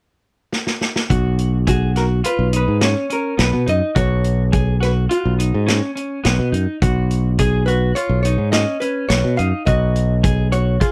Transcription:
0.53 snare
0.67 snare
0.81 snare
0.96 snare
1.10 B1 F#4, kick, closed hi-hat
1.39 closed hi-hat
1.67 F#4 G#4, kick, closed hi-hat
1.96 F#4 A#4, snare, closed hi-hat
2.24 F4 B4, closed hi-hat
2.39 B1
2.53 D#4 B4, closed hi-hat
2.68 G#2
2.81 C#4 C#5, snare, closed hi-hat
3.10 C#4 A#4, closed hi-hat
3.37 B1 B3 B4, snare, closed hi-hat
3.53 B2
3.66 F#2 D#4 D#5, closed hi-hat
3.95 B1 F#4 C#5, kick, closed hi-hat
4.24 closed hi-hat
4.52 G#4, kick, closed hi-hat
4.80 F#4 B4, snare, closed hi-hat
5.09 F4 F#4, closed hi-hat
5.25 B1
5.39 D#4, closed hi-hat
5.54 G#2
5.66 C#4, snare, closed hi-hat
5.96 C#4, closed hi-hat
6.24 B1 B3, snare, closed hi-hat
6.39 B2
6.52 F#2 D#4, closed hi-hat
6.82 B1 F#4, kick, closed hi-hat
7.11 closed hi-hat
7.39 G#4, kick, closed hi-hat
7.66 F#4 B4, closed hi-hat
7.95 F4 C#5, closed hi-hat
8.09 B1
8.23 D#4 C#5, closed hi-hat
8.38 G#2
8.52 C#4 D#5, snare, closed hi-hat
8.80 C#4 B4, closed hi-hat
9.09 B1 B3 C#5, snare, closed hi-hat
9.24 B2
9.37 F#2 D#4 F5, closed hi-hat
9.66 B1 F#4 D#5, kick, closed hi-hat
9.96 closed hi-hat
10.23 G#4, kick, closed hi-hat
10.52 F#4 C#5, closed hi-hat
10.80 F4 G#4, kick, closed hi-hat

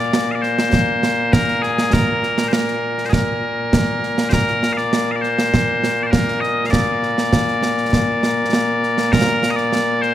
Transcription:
Already playing: A#2 A#3 D5
0.13 snare
0.32 D5 F5
0.41 C5, snare
0.59 snare
0.73 concert bass drum, snare
1.03 snare
1.32 A#4, concert bass drum, snare
1.48 snare
1.62 G#4, snare
1.78 snare
1.93 A#4, concert bass drum, snare
2.23 snare
2.38 snare
2.48 C5
2.53 A#4, snare
2.68 snare
2.98 snare
3.05 C5
3.09 G#4 A#4, concert bass drum, snare
3.73 concert bass drum, snare
4.03 snare
4.18 snare
4.29 A#4 C5, concert bass drum, snare
4.48 snare
4.63 snare
4.73 F5
4.77 D5, snare
4.93 snare
5.12 F5
5.16 D5
5.21 C5, snare
5.39 snare
5.54 concert bass drum, snare
5.84 snare
6.03 C5 D5
6.11 A#4, concert bass drum, snare
6.28 snare
6.40 D#5, snare
6.66 F5
6.71 D5, concert bass drum, snare
7.03 snare
7.18 snare
7.33 concert bass drum, snare
7.48 snare
7.63 snare
7.78 snare
7.93 concert bass drum, snare
8.23 snare
8.53 snare
8.83 snare
8.98 snare
9.12 A#4, concert bass drum, snare
9.28 snare
9.43 snare
9.50 D#5
9.56 D5, snare
9.73 snare
10.01 C5, snare

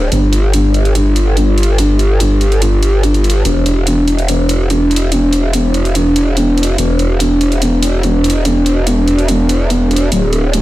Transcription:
0.12 G1, closed hi-hat
0.33 closed hi-hat
0.53 closed hi-hat
0.74 closed hi-hat
0.85 closed hi-hat
0.95 closed hi-hat
1.16 closed hi-hat
1.37 closed hi-hat
1.58 closed hi-hat
1.63 closed hi-hat
1.78 closed hi-hat
1.99 closed hi-hat
2.20 closed hi-hat
2.41 closed hi-hat
2.52 closed hi-hat
2.62 closed hi-hat
2.83 closed hi-hat
3.03 closed hi-hat
3.14 closed hi-hat
3.24 closed hi-hat
3.30 closed hi-hat
3.45 E1, closed hi-hat
3.66 closed hi-hat
3.87 closed hi-hat
4.08 closed hi-hat
4.19 closed hi-hat
4.28 closed hi-hat
4.49 closed hi-hat
4.70 closed hi-hat
4.91 closed hi-hat
4.96 closed hi-hat
5.12 closed hi-hat
5.33 closed hi-hat
5.53 closed hi-hat
5.74 closed hi-hat
5.85 closed hi-hat
5.95 closed hi-hat
6.16 closed hi-hat
6.37 closed hi-hat
6.58 closed hi-hat
6.63 closed hi-hat
6.78 E1, closed hi-hat
6.99 closed hi-hat
7.20 closed hi-hat
7.41 closed hi-hat
7.52 closed hi-hat
7.62 closed hi-hat
7.83 closed hi-hat
8.03 closed hi-hat
8.24 closed hi-hat
8.30 closed hi-hat
8.45 closed hi-hat
8.66 closed hi-hat
8.87 closed hi-hat
9.08 closed hi-hat
9.19 closed hi-hat
9.28 closed hi-hat
9.49 closed hi-hat
9.70 closed hi-hat
9.91 closed hi-hat
9.96 closed hi-hat
10.12 D1, closed hi-hat
10.33 closed hi-hat
10.53 closed hi-hat

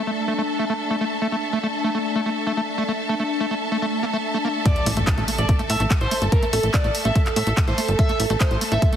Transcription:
Already playing: A3 D4 A4 E5 A5
0.07 A3
0.28 A3
0.38 A3
0.59 A3
0.70 A3
0.91 A3
1.01 A3
1.22 A3
1.32 A3
1.53 A3
1.63 A3
1.84 A3
1.95 A3
2.16 A3
2.26 A3
2.47 A3
2.57 A3
2.78 A3
2.88 A3
3.09 A3
3.20 A3
3.41 A3
3.51 A3
3.72 A3
3.82 A3
4.03 A#3
4.13 A3
4.34 A3
4.45 A#3
4.66 A3 A4 D5, kick, closed hi-hat, impact
4.76 closed hi-hat
4.86 A1 A3, open hi-hat
4.97 A1 A3, closed hi-hat
5.07 A4, kick, clap, closed hi-hat
5.18 A1 A3, closed hi-hat
5.28 A3, open hi-hat
5.38 A1 D5, closed hi-hat
5.49 A3, kick, closed hi-hat
5.59 A3, closed hi-hat
5.70 A2 E5, open hi-hat
5.80 A1 A3, closed hi-hat
5.91 A3, kick, clap, closed hi-hat
6.01 A1 C5, closed hi-hat
6.11 A3, open hi-hat
6.22 G1 A3, closed hi-hat
6.32 A#4, kick, closed hi-hat
6.43 A3, closed hi-hat
6.53 A1 A3 A4, open hi-hat
6.63 A1, closed hi-hat
6.74 A3 D5, kick, clap, closed hi-hat
6.84 A1 A3, closed hi-hat
6.95 open hi-hat
7.05 A1 A3 E5, closed hi-hat
7.16 A3, kick, closed hi-hat
7.26 clap, closed hi-hat
7.36 A2 A3 E5, open hi-hat
7.47 A1 A3, closed hi-hat
7.57 kick, clap, closed hi-hat
7.68 A1 A3 C5, closed hi-hat
7.78 A3, open hi-hat
7.88 G1, closed hi-hat
7.99 A3 E5, kick, closed hi-hat
8.09 A3, closed hi-hat
8.20 A1, open hi-hat
8.30 A1 A3, closed hi-hat
8.40 A3 C5, kick, clap, closed hi-hat
8.51 A1, closed hi-hat
8.61 A3, open hi-hat
8.72 A1 A3 E5, closed hi-hat
8.82 kick, closed hi-hat
8.93 A3, closed hi-hat

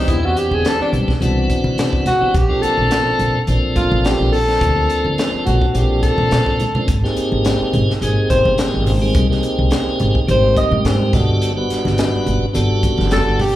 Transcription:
Already playing: E3 B3 C4 D4 D#4 G4
0.08 E2 E4, kick, closed hi-hat
0.22 E3 B3 C4 D4 F#4 G4
0.37 G4, closed hi-hat
0.51 E2 G#4, high conga
0.65 A4, snare, closed hi-hat
0.79 D4, muted upright bass stroke
0.92 C2, closed hi-hat, low conga
1.08 kick, snare
1.21 C2 E3 B3 C4 D4 F#4, closed hi-hat, high conga
1.50 kick, closed hi-hat
1.64 C3, high conga, low conga
1.78 C3, snare, closed hi-hat
1.93 kick
2.06 F#4, snare, closed hi-hat, low conga
2.21 E3 B3 C4 D4 G4, muted upright bass stroke
2.34 A#1 G4, kick, closed hi-hat
2.49 F3 A#3 C4 D4 A4
2.62 A4, muted upright bass stroke, closed hi-hat
2.78 A#1, high conga
2.91 snare, closed hi-hat
3.07 muted upright bass stroke
3.19 A#1, closed hi-hat, low conga
3.35 muted upright bass stroke
3.47 A#1 F3 A#3 C4 D4 A4, closed hi-hat, high conga
3.76 A1 F4, kick, closed hi-hat
3.92 A1, high conga, low conga
4.05 G4, snare, closed hi-hat
4.20 A#1
4.33 A4, open hi-hat
4.47 F3 A#3 C4 D4 A4, snare
4.61 D2, kick, closed hi-hat
4.75 F3 A#3 C4 D4 A4
4.90 closed hi-hat
5.05 D2, high conga
5.18 snare, closed hi-hat
5.33 muted upright bass stroke
5.46 A#1 F#4, closed hi-hat, low conga
5.61 kick
5.73 A#1 F3 A#3 C4 D4 G4 A4, closed hi-hat
6.03 A4, kick, closed hi-hat
6.18 A#2, high conga, low conga
6.31 A#2, snare, closed hi-hat, high conga
6.46 kick, high conga
6.60 closed hi-hat, low conga
6.75 F3 A#3 C4 D4 A4, muted upright bass stroke, low conga
6.88 G#1, kick, closed hi-hat
7.04 A#3 C4 D#4 G4 G#4, snare
7.17 muted upright bass stroke, closed hi-hat
7.32 G#1, high conga
7.45 snare, closed hi-hat
7.61 muted upright bass stroke
7.73 G#1, closed hi-hat, low conga
7.89 muted upright bass stroke, snare
8.01 G#1 A#3 C4 D#4 G4 G#4, closed hi-hat, high conga
8.30 G1 C5, kick, closed hi-hat
8.45 G1, high conga, low conga
8.58 snare, closed hi-hat
8.74 G#1
8.86 open hi-hat, low conga
9.02 G3 A#3 C4 D#4 G#4
9.15 C2, kick, closed hi-hat
9.30 A#3 C4 D#4 G4 G#4, snare
9.43 closed hi-hat
9.59 C2, high conga
9.71 snare, closed hi-hat
9.87 muted upright bass stroke
10.00 G#1, closed hi-hat, low conga
10.15 kick
10.27 G#1 G3 A#3 C4 D#4 G4 C5, closed hi-hat, high conga
10.56 D#5, kick, closed hi-hat
10.72 G#2, high conga, low conga
10.85 G#2, snare, closed hi-hat
11.13 G1 G3 B3 D4 F#4 A4, kick, snare, closed hi-hat, low conga
11.42 closed hi-hat
11.56 G3 B3 D4 F#4 B4
11.70 muted upright bass stroke, snare, closed hi-hat
11.85 G1, snare, high conga
11.98 snare, closed hi-hat
12.14 muted upright bass stroke
12.26 G1, closed hi-hat, low conga
12.42 muted upright bass stroke
12.53 G1 G3 B3 D4 F#4 A4, closed hi-hat, high conga
12.83 F#1, kick, closed hi-hat
12.98 F#1, snare, high conga
13.11 A4, snare, closed hi-hat
13.27 G1
13.39 G4, open hi-hat, low conga

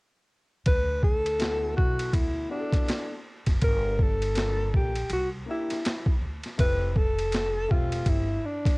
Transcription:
0.66 D2 B4, kick, ride
1.03 A4, kick
1.26 ride
1.39 B3 E4 F#4 A4, snare, hi-hat pedal, ride
1.77 B1 F#4, kick
1.99 ride
2.13 D2 E4, kick, ride
2.49 B3 D4 E4 F#4 G4
2.59 A4
2.72 kick, snare, ride
2.88 snare, hi-hat pedal, ride
3.46 F#1, kick, snare, ride
3.62 G1 A#4, kick, ride
3.99 A4, kick
4.22 ride
4.35 A#3 D4 F4 A4, snare, hi-hat pedal, ride
4.74 A#1 G4, kick
4.96 ride
5.10 C2 F#4, ride
5.46 A#3 D4 E4 G4
5.51 E4
5.70 snare, ride
5.85 snare, hi-hat pedal, ride
6.06 kick
6.21 D2
6.43 snare, ride
6.58 F1 A3 C4 E4 G4 B4, kick, ride
6.92 B4, kick
6.97 A4
7.19 ride
7.32 snare, hi-hat pedal, ride
7.69 E1 A3 C4 F4 G4 E5, kick
7.92 ride
8.06 G1 E4, kick, ride
8.46 D4
8.66 kick, snare, ride

